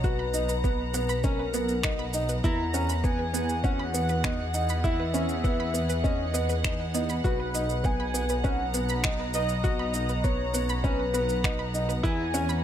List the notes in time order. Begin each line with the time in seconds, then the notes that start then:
Already playing: B1 B2 B3 F#5 A#5
0.04 F#4 B4 F#5, kick, shaker
0.19 B5
0.34 D#4, shaker
0.49 B4, shaker
0.64 B3, kick, shaker
0.94 B3 F#5, shaker
1.09 B5, shaker
1.24 C#4 A#4, kick, shaker
1.39 B4
1.54 B3, shaker
1.69 shaker
1.83 D#4 F#5, finger snap, kick, shaker
1.99 B5
2.13 D#4, shaker
2.29 B4, shaker
2.44 E2 E3 B3 E4 A#5, kick, shaker
2.74 C#4 F#5, shaker
2.89 B5, shaker
3.04 B3 G#5, kick, shaker
3.19 B4
3.34 B3, shaker
3.49 shaker
3.60 C#4 G#4, shaker
3.64 F#5, kick
3.79 B5
3.94 B3, shaker
4.09 B4, shaker
4.24 B3 D#4, finger snap, kick, shaker
4.54 D#4 F#5, shaker
4.69 B5, shaker
4.84 E4 E5, kick, shaker
5.00 B4
5.14 B3 C#4, shaker
5.29 shaker
5.44 B3 F#5, kick, shaker
5.60 B5
5.74 B3, shaker
5.90 B4, shaker
6.04 B3 C#4 D#5, kick, shaker
6.34 B3 D#5, shaker
6.49 B4, shaker
6.64 D#4, finger snap, kick, shaker
6.80 B4
6.94 B3 D#4, shaker
7.09 B5, shaker
7.24 B1 B2 F#4 B4, kick, shaker
7.40 B4
7.54 D#4 B4, shaker
7.69 shaker
7.84 B3 F#5 G#5, kick, shaker
8.00 B5
8.14 B3, shaker
8.29 B4, shaker
8.35 A#5
8.44 C#4 B4 F#5, kick, shaker
8.74 B3 F#5, shaker
8.89 B5, shaker
9.04 D#4, finger snap, kick, shaker
9.20 B4
9.34 D#4 B4 D#5, shaker
9.49 shaker
9.64 F#4 D#5 F#5, kick, shaker
9.79 B5
9.94 D#4, shaker
10.09 B4, shaker
10.24 B3 B4 C#5, kick, shaker
10.54 B3 F#5, shaker
10.69 B5, shaker
10.84 C#4 B4, kick, shaker
10.99 B4
11.14 B3 B4, shaker
11.29 shaker
11.44 D#4 F#5, finger snap, kick, shaker
11.59 B5
11.74 D#4, shaker
11.89 B4, shaker
12.03 E2 E3 E4 B4 G#5, kick, shaker
12.34 C#4 F#5, shaker
12.49 B5, shaker